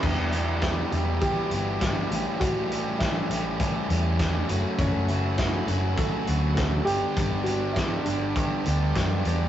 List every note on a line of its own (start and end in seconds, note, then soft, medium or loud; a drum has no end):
0.03 0.16 E1 loud
0.03 0.33 E2 medium
0.03 0.33 B2 medium
0.03 0.35 E3 loud
0.03 4.45 G3 medium
0.03 0.35 G3 medium
0.03 0.35 B3 medium
0.03 0.65 D4 medium
0.03 0.35 E4 medium
0.03 6.83 E5 medium
0.03 2.09 B5 medium
0.03 2.09 D6 medium
0.03 kick loud
0.03 crash medium
0.07 0.36 G4 medium
0.18 0.82 E1 medium
0.32 0.62 E2 medium
0.32 0.63 B2 medium
0.32 0.65 E3 medium
0.32 0.65 G3 medium
0.32 0.65 B3 medium
0.32 0.65 E4 medium
0.32 closed hi-hat medium
0.37 0.66 G4 medium
0.62 0.92 E2 medium
0.62 0.93 B2 medium
0.62 0.94 E3 medium
0.62 0.94 G3 medium
0.62 1.24 E4 medium
0.62 0.94 E4 medium
0.62 kick medium
0.62 snare loud
0.62 closed hi-hat medium
0.66 0.95 B3 medium
0.66 0.95 G4 medium
0.92 1.18 E1 loud
0.92 1.22 E2 medium
0.92 1.22 B2 medium
0.92 1.24 E3 medium
0.92 1.24 G3 medium
0.92 1.23 E4 medium
0.92 closed hi-hat medium
0.96 1.24 B3 medium
0.96 1.25 G4 loud
1.21 1.51 E2 medium
1.21 1.52 B2 medium
1.21 1.53 E3 medium
1.21 1.53 E4 medium
1.21 2.44 G4 medium
1.21 kick medium
1.21 closed hi-hat medium
1.25 1.53 G3 medium
1.25 1.54 B3 medium
1.25 1.54 G4 medium
1.51 2.03 G1 loud
1.51 1.80 E2 medium
1.51 1.81 B2 medium
1.51 1.83 E3 medium
1.51 1.82 G3 medium
1.51 1.83 B3 medium
1.51 1.83 E4 loud
1.51 closed hi-hat medium
1.55 1.83 G4 medium
1.81 2.10 E2 medium
1.81 2.10 B2 medium
1.81 2.13 E3 medium
1.81 2.11 G3 medium
1.81 2.11 B3 medium
1.81 2.12 E4 medium
1.81 2.11 G4 medium
1.81 kick medium
1.81 snare loud
1.81 closed hi-hat medium
2.10 2.24 A1 medium
2.10 2.41 A2 medium
2.10 2.42 E3 medium
2.10 2.42 G3 medium
2.10 2.43 C#4 medium
2.10 2.43 E4 medium
2.10 4.48 A5 medium
2.10 6.85 C#6 medium
2.10 closed hi-hat medium
2.14 2.43 G4 loud
2.40 2.54 A1 loud
2.40 2.70 A2 medium
2.40 2.71 E3 medium
2.40 2.71 G3 loud
2.40 2.72 C#4 medium
2.40 2.73 E4 loud
2.40 3.02 F#4 loud
2.40 kick loud
2.40 closed hi-hat medium
2.44 2.72 G4 loud
2.56 3.20 A1 medium
2.71 3.00 A2 medium
2.71 3.01 E3 medium
2.71 3.01 G3 medium
2.71 3.02 C#4 medium
2.71 3.03 E4 medium
2.71 3.02 G4 medium
2.71 closed hi-hat medium
2.98 3.29 A2 medium
2.98 3.30 E3 medium
2.98 4.44 E4 medium
2.98 kick medium
2.98 snare loud
2.98 closed hi-hat medium
3.02 3.31 G3 medium
3.02 3.31 C#4 medium
3.02 3.31 E4 medium
3.02 3.32 G4 medium
3.30 3.56 A1 loud
3.30 3.59 A2 medium
3.30 3.60 E3 medium
3.30 3.60 G3 medium
3.30 3.61 C#4 loud
3.30 3.61 E4 medium
3.30 3.61 G4 medium
3.30 closed hi-hat medium
3.60 3.88 A2 medium
3.60 3.89 E3 medium
3.60 3.90 G3 medium
3.60 3.90 C#4 medium
3.60 3.91 E4 medium
3.60 3.90 G4 medium
3.60 kick medium
3.60 closed hi-hat medium
3.89 4.41 E2 medium
3.89 4.18 A2 medium
3.89 4.19 E3 medium
3.89 4.19 G3 medium
3.89 4.20 C#4 loud
3.89 4.20 E4 medium
3.89 4.20 G4 medium
3.89 closed hi-hat medium
4.19 4.48 A2 medium
4.19 4.48 E3 medium
4.19 4.48 G3 medium
4.19 4.48 C#4 medium
4.19 4.49 E4 loud
4.19 4.49 G4 medium
4.19 kick loud
4.19 snare loud
4.19 closed hi-hat medium
4.49 4.62 F#1 medium
4.49 4.78 F#2 medium
4.49 4.78 C#3 medium
4.49 4.79 F#3 loud
4.49 4.79 A3 loud
4.49 4.80 C#4 medium
4.49 6.85 F#4 medium
4.49 4.81 F#4 loud
4.49 6.85 A5 medium
4.49 closed hi-hat medium
4.78 4.92 F#1 loud
4.78 5.07 F#2 medium
4.78 5.08 C#3 medium
4.78 5.09 F#3 medium
4.78 5.09 A3 loud
4.78 5.40 C#4 medium
4.78 5.09 C#4 loud
4.78 5.10 F#4 medium
4.78 kick loud
4.78 closed hi-hat medium
4.94 5.58 F#1 medium
5.08 5.37 F#2 medium
5.08 5.38 C#3 medium
5.08 5.39 F#3 medium
5.08 5.38 A3 medium
5.08 5.39 C#4 medium
5.08 5.41 F#4 medium
5.08 closed hi-hat medium
5.38 5.67 F#2 medium
5.38 5.68 C#3 medium
5.38 5.69 F#3 medium
5.38 5.69 A3 medium
5.38 5.69 C#4 medium
5.38 6.00 E4 medium
5.38 5.71 F#4 medium
5.38 kick medium
5.38 snare loud
5.38 closed hi-hat medium
5.68 5.94 F#1 loud
5.68 5.97 F#2 medium
5.68 5.98 C#3 medium
5.68 5.99 F#3 medium
5.68 5.99 A3 medium
5.68 5.99 C#4 medium
5.68 6.00 F#4 medium
5.68 closed hi-hat medium
5.96 6.27 F#2 medium
5.96 6.28 C#3 medium
5.96 6.28 F#3 medium
5.96 6.53 A4 loud
5.96 kick loud
5.96 closed hi-hat medium
6.00 6.28 A3 medium
6.00 6.29 C#4 medium
6.00 6.30 F#4 medium
6.27 6.79 D2 medium
6.27 6.55 F#2 medium
6.27 6.56 C#3 medium
6.27 6.57 F#3 medium
6.27 6.57 A3 loud
6.27 6.58 C#4 medium
6.27 6.59 F#4 loud
6.27 closed hi-hat medium
6.55 6.85 F#2 medium
6.55 6.86 C#3 medium
6.55 6.86 F#3 medium
6.55 6.86 A3 medium
6.55 6.87 A4 loud
6.55 kick loud
6.55 snare loud
6.55 closed hi-hat medium
6.59 6.87 C#4 medium
6.59 6.87 F#4 loud
6.85 7.00 G1 medium
6.85 7.16 G2 medium
6.85 7.16 D3 medium
6.85 7.17 G3 medium
6.85 7.18 B3 loud
6.85 7.48 G4 loud
6.85 9.49 G4 medium
6.85 9.49 D6 medium
6.85 closed hi-hat medium
6.89 7.18 D4 medium
6.89 7.19 G4 loud
6.89 9.49 F#5 medium
6.89 9.49 B5 medium
7.16 7.30 G1 loud
7.16 7.45 G2 medium
7.16 7.45 D3 medium
7.16 7.46 G3 medium
7.16 7.47 B3 medium
7.16 7.48 D4 medium
7.16 7.48 G4 loud
7.16 kick loud
7.16 closed hi-hat medium
7.33 7.97 G1 medium
7.43 7.75 G2 medium
7.43 7.75 D3 medium
7.43 7.77 G3 medium
7.43 7.76 F#4 medium
7.43 closed hi-hat medium
7.48 7.77 B3 medium
7.48 7.78 D4 medium
7.48 7.78 G4 medium
7.73 8.05 G2 medium
7.73 8.05 D3 medium
7.73 8.06 E4 medium
7.73 kick medium
7.73 snare medium
7.73 closed hi-hat medium
7.77 8.07 G3 medium
7.77 8.07 B3 medium
7.77 8.07 D4 medium
7.77 8.08 G4 medium
8.04 8.32 G1 loud
8.04 8.35 G2 medium
8.04 8.35 D3 medium
8.04 8.37 G3 medium
8.04 8.36 B3 loud
8.04 9.20 D4 medium
8.04 closed hi-hat medium
8.08 8.37 D4 medium
8.08 8.38 G4 medium
8.36 8.64 G2 medium
8.36 8.65 D3 medium
8.36 8.67 G3 medium
8.36 8.66 B3 medium
8.36 8.67 D4 medium
8.36 8.68 G4 medium
8.36 kick loud
8.36 closed hi-hat medium
8.65 8.92 D2 medium
8.65 8.95 G2 medium
8.65 8.96 D3 medium
8.65 8.97 G3 medium
8.65 8.96 B3 medium
8.65 8.97 D4 medium
8.65 8.98 G4 medium
8.65 closed hi-hat medium
8.95 9.22 F#2 medium
8.95 9.24 G2 medium
8.95 9.25 D3 medium
8.95 9.26 G3 medium
8.95 9.26 B3 medium
8.95 9.27 D4 medium
8.95 9.28 G4 medium
8.95 kick medium
8.95 snare loud
8.95 closed hi-hat medium
9.25 9.49 E2 medium
9.25 9.49 G2 medium
9.25 9.49 D3 medium
9.25 9.49 G3 medium
9.25 9.49 B3 medium
9.25 9.49 D4 medium
9.25 9.49 G4 medium
9.25 closed hi-hat medium